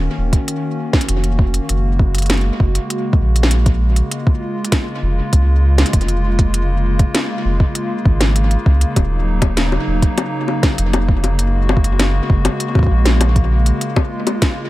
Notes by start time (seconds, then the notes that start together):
Already playing: D#3 A#3 C#4 F#4
0.18 D#1
0.33 kick, closed hi-hat
0.48 closed hi-hat
0.93 kick, snare
1.01 closed hi-hat
1.09 F1, closed hi-hat
1.24 closed hi-hat
1.39 kick
1.54 closed hi-hat
1.69 F#1 C#3 G#3, closed hi-hat
1.99 kick
2.15 closed hi-hat
2.18 closed hi-hat
2.22 closed hi-hat
2.26 snare, closed hi-hat
2.30 closed hi-hat
2.37 closed hi-hat
2.41 closed hi-hat
2.60 F#1, kick
2.75 closed hi-hat
2.90 closed hi-hat
3.13 kick
3.21 A#1
3.36 closed hi-hat
3.43 snare
3.51 closed hi-hat
3.66 kick, closed hi-hat
3.96 closed hi-hat
4.11 A#3 F4, closed hi-hat
4.27 kick
4.65 closed hi-hat
4.72 kick, snare, closed hi-hat
5.02 F1
5.33 C#2, kick, closed hi-hat
5.78 snare, closed hi-hat
5.86 closed hi-hat
5.93 F1, kick, closed hi-hat
6.01 closed hi-hat
6.08 closed hi-hat
6.39 kick, closed hi-hat
6.54 closed hi-hat
6.99 kick, closed hi-hat
7.15 snare, closed hi-hat
7.45 F1
7.60 kick
7.75 closed hi-hat
8.05 G#1, kick
8.21 snare, closed hi-hat
8.36 closed hi-hat
8.51 closed hi-hat
8.66 C#2, kick
8.81 closed hi-hat
8.96 D#1 F#3 D#4, kick, closed hi-hat, high bongo
9.42 kick, closed hi-hat, high bongo
9.57 snare, closed hi-hat
9.72 high bongo
9.87 D#1
10.02 kick, closed hi-hat
10.18 closed hi-hat, high bongo
10.48 high bongo
10.63 kick, snare, closed hi-hat
10.78 F1, closed hi-hat
10.93 closed hi-hat, high bongo
11.09 kick
11.24 closed hi-hat, high bongo
11.39 F#1 G#3 F#4, closed hi-hat
11.69 high bongo
11.77 kick
11.84 closed hi-hat
11.99 snare, closed hi-hat, high bongo
12.30 F#1, kick
12.45 closed hi-hat, high bongo
12.60 closed hi-hat
12.75 kick, high bongo
12.79 kick
12.83 kick
12.87 A#1, kick
13.05 snare, closed hi-hat
13.21 closed hi-hat, high bongo
13.36 kick, closed hi-hat
13.66 closed hi-hat
13.81 F4, closed hi-hat
13.96 kick, high bongo
14.27 closed hi-hat, high bongo
14.42 kick, snare, closed hi-hat